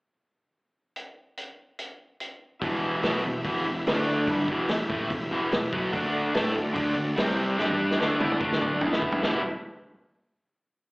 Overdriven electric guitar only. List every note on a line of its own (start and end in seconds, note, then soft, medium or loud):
2.62 3.03 E2 medium
2.62 3.01 B2 medium
2.62 3.03 E3 loud
3.02 3.23 B2 medium
3.02 3.24 F#3 medium
3.02 3.23 B3 medium
3.24 3.41 E2 medium
3.24 3.41 B2 medium
3.45 3.65 E2 medium
3.45 3.64 B2 medium
3.45 3.66 E3 loud
3.66 3.82 E2 medium
3.66 3.82 B2 medium
3.87 4.28 D3 medium
3.87 4.28 A3 loud
3.87 4.28 D4 medium
4.28 4.48 G2 medium
4.28 4.48 D3 medium
4.28 4.49 G3 loud
4.48 4.68 E2 medium
4.48 4.68 B2 loud
4.48 4.69 E3 loud
4.69 4.86 E2 medium
4.69 4.86 B2 medium
4.89 5.10 A2 medium
4.89 5.10 E3 medium
4.89 5.10 A3 loud
5.10 5.27 E2 medium
5.10 5.27 B2 medium
5.31 5.51 E2 medium
5.31 5.52 B2 medium
5.31 5.52 E3 loud
5.53 5.69 E2 medium
5.53 5.69 B2 medium
5.73 5.92 B2 medium
5.73 5.92 F#3 medium
5.73 5.93 B3 medium
5.93 6.34 D3 medium
5.93 6.32 A3 loud
5.93 6.34 D4 loud
6.33 6.54 A3 medium
6.33 6.55 E4 medium
6.33 6.55 A4 medium
6.54 6.71 D3 medium
6.54 6.72 A3 medium
6.73 6.95 D3 medium
6.73 6.95 A3 loud
6.73 6.96 D4 loud
6.96 7.13 D3 medium
6.96 7.13 A3 medium
7.16 7.57 C3 medium
7.16 7.56 G3 medium
7.16 7.58 C4 loud
7.57 7.98 G3 medium
7.57 7.99 D4 loud
7.57 7.99 G4 loud
7.98 8.19 D3 medium
7.98 8.20 A3 medium
7.98 8.20 D4 medium
8.20 8.39 E3 medium
8.20 8.39 B3 medium
8.20 8.40 E4 medium
8.40 8.82 D3 medium
8.40 8.83 A3 medium
8.40 8.84 D4 loud
8.82 9.22 E3 medium
8.82 9.23 B3 medium
8.82 9.23 E4 medium
9.23 9.39 E2 medium
9.23 9.39 B2 medium
9.23 9.40 E3 medium
9.23 9.40 G3 loud
9.23 9.40 B3 loud
9.23 9.40 E4 loud